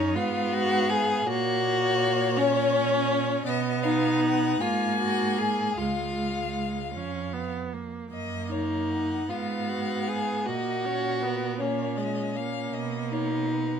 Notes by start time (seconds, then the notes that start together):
Already playing: F#2 C#4 D#4 C#5
0.15 G#2 B3 F4 F5
0.53 F#4
0.90 G#4
1.26 A#2 A#3 F#4 C#5
2.37 C#4
3.46 B2 B3 D#5
3.83 D#4 F5
4.21 F#5
4.61 G#2 A#3 F4 G#5
4.99 F#4
5.38 G#4
5.77 C#2 G#3 F4 F5
6.94 F2 C#4
7.33 B3
7.73 A#3
8.12 F#2 A#3 D#5
8.51 D#4 C#5
8.91 F#5
9.30 G#2 B3 F4 F5
9.70 F#4
10.08 G#4
10.47 A#2 A#3 F#4 D#5
10.85 C#4 C#5
11.22 B3 A#4
11.60 A#3 C#4 C#5
11.97 G#3 D#5
12.35 A#3 F5
12.74 B2 D#5
13.11 D#4 C#5
13.50 B4